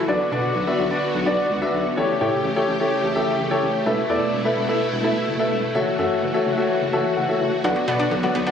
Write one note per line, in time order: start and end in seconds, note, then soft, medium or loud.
0.08 0.18 B1 loud
0.08 1.95 D3 medium
0.08 1.95 B3 medium
0.08 0.23 D4 medium
0.08 1.95 F#4 medium
0.08 0.23 F#4 medium
0.08 0.23 B4 medium
0.08 0.23 D5 loud
0.32 0.41 B2 loud
0.32 0.54 D4 medium
0.32 0.54 F#4 medium
0.32 0.54 B4 medium
0.32 0.54 D5 loud
0.55 0.65 B1 loud
0.67 0.82 D4 medium
0.67 0.82 F#4 medium
0.67 0.82 B4 medium
0.67 0.82 E5 loud
0.79 0.89 B1 loud
0.91 1.13 D4 medium
0.91 1.13 F#4 medium
0.91 1.13 B4 medium
0.91 1.13 D5 loud
1.14 1.24 B1 loud
1.26 1.36 B1 loud
1.26 1.48 D4 medium
1.26 1.48 F#4 medium
1.26 1.48 B4 medium
1.26 1.48 D5 loud
1.50 1.60 C#2 medium
1.62 1.83 D4 medium
1.62 1.83 F#4 medium
1.62 1.83 B4 medium
1.62 1.83 E5 loud
1.74 1.83 B1 loud
1.97 2.07 A1 loud
1.97 3.84 C#3 medium
1.97 7.60 A3 medium
1.97 2.12 E4 medium
1.97 2.12 G4 medium
1.97 3.84 G4 medium
1.97 2.12 A4 medium
1.97 2.12 C#5 loud
2.21 2.30 A2 loud
2.21 2.43 E4 medium
2.21 2.43 G4 medium
2.21 2.43 A4 medium
2.21 2.43 C#5 medium
2.44 2.54 A1 loud
2.56 2.71 E4 medium
2.56 2.71 G4 medium
2.56 2.71 A4 medium
2.56 2.71 C#5 loud
2.68 2.78 A1 loud
2.80 3.02 E4 medium
2.80 3.02 G4 medium
2.80 3.02 A4 medium
2.80 3.02 C#5 medium
3.04 3.13 A1 loud
3.15 3.25 A1 loud
3.15 3.37 E4 medium
3.15 3.37 G4 medium
3.15 3.37 A4 medium
3.15 3.37 E5 loud
3.39 3.48 A1 loud
3.51 3.73 E4 medium
3.51 3.73 G4 medium
3.51 3.73 A4 medium
3.51 3.73 C#5 loud
3.62 3.72 A1 loud
3.86 3.96 E1 loud
3.86 5.73 B2 medium
3.86 4.01 E4 medium
3.86 5.73 E4 medium
3.86 4.01 A4 medium
3.86 4.01 B4 medium
3.86 4.01 E5 loud
4.10 4.19 E2 loud
4.10 4.31 E4 medium
4.10 4.31 A4 medium
4.10 4.31 B4 medium
4.10 4.31 D5 loud
4.33 4.43 E1 loud
4.45 4.60 E4 medium
4.45 4.60 A4 medium
4.45 4.60 B4 medium
4.45 4.60 E5 loud
4.57 4.67 E1 loud
4.69 4.91 E4 medium
4.69 4.90 A4 medium
4.69 4.90 B4 medium
4.69 4.90 E5 loud
4.92 5.02 E1 loud
5.04 5.14 E1 loud
5.04 5.26 E4 medium
5.04 5.26 A4 medium
5.04 5.26 B4 medium
5.04 5.26 E5 loud
5.28 5.37 F#1 loud
5.39 5.61 E4 medium
5.39 5.61 A4 medium
5.39 5.61 B4 medium
5.39 5.61 E5 loud
5.51 5.61 E1 medium
5.75 5.85 F#1 loud
5.75 7.62 E3 medium
5.75 5.89 F#4 medium
5.75 8.51 F#4 medium
5.75 5.89 A4 medium
5.75 5.89 C#5 medium
5.75 5.89 E5 loud
5.99 6.08 F#2 loud
5.99 6.21 F#4 medium
5.99 6.20 A4 medium
5.99 6.20 C#5 medium
5.99 6.20 E5 medium
6.22 6.32 F#1 loud
6.34 6.49 F#4 medium
6.34 6.49 A4 medium
6.34 6.49 C#5 medium
6.34 6.49 E5 medium
6.46 6.55 F#1 loud
6.58 6.79 F#4 medium
6.58 6.79 A4 medium
6.58 6.79 C#5 medium
6.58 6.79 E5 medium
6.82 6.91 F#1 loud
6.93 7.03 F#1 loud
6.93 7.15 F#4 medium
6.93 7.15 A4 medium
6.93 7.15 C#5 medium
6.93 7.15 E5 loud
6.93 7.15 A5 medium
7.17 7.26 F#1 loud
7.17 7.39 F#5 medium
7.29 7.50 F#4 medium
7.29 7.50 A4 medium
7.29 7.50 C#5 medium
7.29 7.39 E5 loud
7.41 7.50 F#1 loud
7.41 7.63 E5 medium
7.64 7.74 B1 loud
7.64 7.74 D3 medium
7.64 8.51 D3 medium
7.64 8.51 B3 medium
7.64 7.79 F#4 medium
7.64 7.79 B4 medium
7.64 7.79 D5 medium
7.64 7.79 F#5 loud
7.76 7.85 F#3 medium
7.88 7.97 B2 loud
7.88 7.97 B3 medium
7.88 8.10 F#4 medium
7.88 8.10 B4 medium
7.88 8.10 D5 medium
7.88 8.10 F#5 medium
8.00 8.09 D4 medium
8.11 8.21 B1 loud
8.11 8.21 D3 medium
8.23 8.32 F#3 medium
8.23 8.38 F#4 medium
8.23 8.38 B4 medium
8.23 8.38 D5 medium
8.23 8.38 F#5 loud
8.35 8.45 B1 loud
8.35 8.44 B3 medium
8.47 8.51 D4 medium
8.47 8.51 F#4 medium
8.47 8.51 B4 medium
8.47 8.51 D5 medium
8.47 8.51 F#5 medium